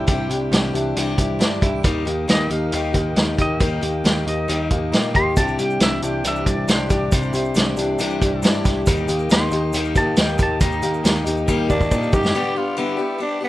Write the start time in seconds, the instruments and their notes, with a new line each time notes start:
Already playing: clean electric guitar E3 G3 D4 E4, tonewheel organ E4 C5 G5 D6
0.07 picked electric bass C2, steel-string acoustic guitar C3 G3 D4 E4 G4, pedal steel guitar G5, kick, closed hi-hat
0.29 picked electric bass C2, clean electric guitar G3, steel-string acoustic guitar D4 E4 G4, closed hi-hat
0.51 picked electric bass C2, clean electric guitar E3, steel-string acoustic guitar G3 D4 E4 G4, snare, closed hi-hat
0.73 picked electric bass C2, steel-string acoustic guitar D4 E4 G4, closed hi-hat
0.96 picked electric bass C2, steel-string acoustic guitar C3 G3 D4 E4 G4, clean electric guitar E3, closed hi-hat
1.18 picked electric bass C2, clean electric guitar G3, steel-string acoustic guitar D4 E4 G4, kick, closed hi-hat
1.39 picked electric bass G2, steel-string acoustic guitar G3 D4 E4 G4, snare, closed hi-hat
1.61 picked electric bass C2, steel-string acoustic guitar D4 E4 G4, kick, closed hi-hat
1.83 picked electric bass D#2, steel-string acoustic guitar D#3 G3 A#3 D#4 G4, tonewheel organ D#4 A#4 D#6, kick, closed hi-hat
2.05 picked electric bass D#2, steel-string acoustic guitar A#3 D#4 G4, closed hi-hat
2.28 picked electric bass D#2, clean electric guitar D#3, steel-string acoustic guitar G3 A#3 D#4 G4, pedal steel guitar D#5, snare, closed hi-hat
2.50 picked electric bass D#2, steel-string acoustic guitar A#3 D#4 G4, pedal steel guitar F5, closed hi-hat
2.72 picked electric bass D#2, steel-string acoustic guitar D#3 G3 A#3 D#4 G4, closed hi-hat
2.93 picked electric bass D#2, steel-string acoustic guitar A#3 D#4 G4, kick, closed hi-hat
2.97 pedal steel guitar G5
3.16 picked electric bass D#2, steel-string acoustic guitar G3 A#3 D#4 G4, pedal steel guitar F5, snare, closed hi-hat
3.37 picked electric bass D#2, steel-string acoustic guitar A#3 D#4 G4, kick, closed hi-hat
3.42 pedal steel guitar D#5
3.60 picked electric bass D#2, steel-string acoustic guitar D#3 G3 A#3 D#4 G4, pedal steel guitar G5, kick, closed hi-hat
3.81 picked electric bass D#2, steel-string acoustic guitar A#3 D#4 G4, closed hi-hat
4.04 picked electric bass D#2, clean electric guitar D#3, steel-string acoustic guitar G3 A#3 D#4 G4, snare, closed hi-hat
4.26 picked electric bass D#2, steel-string acoustic guitar A#3 D#4 G4, pedal steel guitar D#5, closed hi-hat
4.48 picked electric bass D#2, steel-string acoustic guitar D#3 G3 A#3 D#4 G4, closed hi-hat
4.70 picked electric bass D#2, steel-string acoustic guitar A#3 D#4 G4, kick, closed hi-hat
4.92 picked electric bass A#2, steel-string acoustic guitar G3 A#3 D#4 G4, snare, closed hi-hat
5.14 picked electric bass D#2, steel-string acoustic guitar A#3 D#4 G4, pedal steel guitar C6, kick, closed hi-hat
5.36 picked electric bass C2, steel-string acoustic guitar C3 G3 D4 E4 G4, tonewheel organ E4 C5 G5 D6, pedal steel guitar A5, kick, closed hi-hat, shaker
5.48 shaker
5.58 picked electric bass C2, clean electric guitar G3, steel-string acoustic guitar D4 E4 G4, pedal steel guitar G5, closed hi-hat, shaker
5.70 shaker
5.80 picked electric bass C2, clean electric guitar E3, steel-string acoustic guitar G3 D4 E4 G4, pedal steel guitar E5, snare, closed hi-hat, shaker
6.02 picked electric bass C2, steel-string acoustic guitar D4 E4 G4, pedal steel guitar G5, closed hi-hat, shaker
6.24 picked electric bass C2, steel-string acoustic guitar C3 G3 D4 E4 G4, clean electric guitar E3, pedal steel guitar E5, closed hi-hat, shaker
6.36 shaker
6.46 picked electric bass C2, clean electric guitar G3, steel-string acoustic guitar D4 E4 G4, pedal steel guitar D5, kick, closed hi-hat, shaker
6.68 picked electric bass C2, steel-string acoustic guitar G3 D4 E4 G4, pedal steel guitar C5, snare, closed hi-hat, shaker
6.79 shaker
6.90 picked electric bass C2, steel-string acoustic guitar D4 E4 G4, pedal steel guitar D5, kick, closed hi-hat, shaker
7.12 picked electric bass C2, steel-string acoustic guitar C3 G3 D4 E4 G4, pedal steel guitar C5, kick, closed hi-hat, shaker
7.22 shaker
7.33 picked electric bass C2, clean electric guitar G3, steel-string acoustic guitar D4 E4 G4, closed hi-hat, shaker
7.45 shaker
7.55 picked electric bass C2, clean electric guitar E3, steel-string acoustic guitar G3 D4 E4 G4, snare, closed hi-hat, shaker
7.77 picked electric bass C2, steel-string acoustic guitar D4 E4 G4, closed hi-hat, shaker
7.99 picked electric bass C2, steel-string acoustic guitar C3 G3 D4 E4 G4, clean electric guitar E3, closed hi-hat, shaker
8.10 shaker
8.21 picked electric bass C2, clean electric guitar G3, steel-string acoustic guitar D4 E4 G4, kick, closed hi-hat, shaker
8.42 picked electric bass G2, steel-string acoustic guitar G3 D4 E4 G4, snare, closed hi-hat, shaker
8.54 shaker
8.65 picked electric bass C2, steel-string acoustic guitar D4 E4 G4, kick, snare, closed hi-hat, shaker
8.86 picked electric bass D#2, tonewheel organ D#3 A#4 D#6, steel-string acoustic guitar D#3 G3 A#3 D#4 G4, kick, closed hi-hat, shaker
8.97 shaker
9.08 picked electric bass D#2, steel-string acoustic guitar A#3 D#4 G4, closed hi-hat, shaker
9.19 shaker
9.29 picked electric bass D#2, clean electric guitar D#3, steel-string acoustic guitar G3 A#3 D#4 G4, pedal steel guitar C6, snare, closed hi-hat, shaker
9.51 picked electric bass D#2, steel-string acoustic guitar A#3 D#4 G4, closed hi-hat, shaker
9.73 picked electric bass D#2, steel-string acoustic guitar D#3 G3 A#3 D#4, closed hi-hat, shaker
9.77 steel-string acoustic guitar G4
9.85 shaker
9.94 picked electric bass D#2, clean electric guitar A#3, steel-string acoustic guitar D#4 G4, pedal steel guitar A5, kick, closed hi-hat, shaker
9.99 steel-string acoustic guitar A#3
10.16 picked electric bass D#2, steel-string acoustic guitar G3 A#3 D#4 G4, pedal steel guitar G5, snare, closed hi-hat, shaker
10.29 shaker
10.38 picked electric bass D#2, steel-string acoustic guitar D#4 G4, kick, closed hi-hat, shaker
10.42 steel-string acoustic guitar A#3, pedal steel guitar A5
10.60 picked electric bass D#2, steel-string acoustic guitar D#3 G3 A#3 D#4 G4, pedal steel guitar A#5, kick, closed hi-hat, shaker
10.72 shaker
10.82 picked electric bass D#2, steel-string acoustic guitar A#3 D#4 G4, closed hi-hat, shaker
10.94 shaker
11.03 picked electric bass D#2, clean electric guitar D#3, steel-string acoustic guitar G3 A#3 D#4 G4, snare, closed hi-hat, shaker
11.16 shaker
11.26 picked electric bass D#2, steel-string acoustic guitar A#3 D#4 G4, closed hi-hat, shaker
11.37 shaker
11.48 picked electric bass D#2, steel-string acoustic guitar D#3 G3 A#3 D#4 G4, kick, shaker
11.68 picked electric bass D#2, steel-string acoustic guitar A#3 D#4 G4, tenor saxophone D4, kick, shaker
11.81 kick, shaker
11.91 picked electric bass A#2, steel-string acoustic guitar G3 A#3 D#4 G4, kick, shaker
12.03 shaker
12.12 picked electric bass F#2, steel-string acoustic guitar A#3 D#4 G4, tenor saxophone G4, kick, shaker
12.23 snare, shaker
12.34 steel-string acoustic guitar G2 D3 G3 B3 D4 G4, tonewheel organ B4 D5 G5 D6
12.55 steel-string acoustic guitar G3 B3 D4 G4, tenor saxophone F4
12.77 steel-string acoustic guitar G2 D3 G3 B3 D4 G4, tenor saxophone E4
12.97 steel-string acoustic guitar G3 B3 D4 G4
13.19 steel-string acoustic guitar G3 B3 D4 G4, tenor saxophone D4
13.40 steel-string acoustic guitar G3 B3 D4 G4, tenor saxophone B3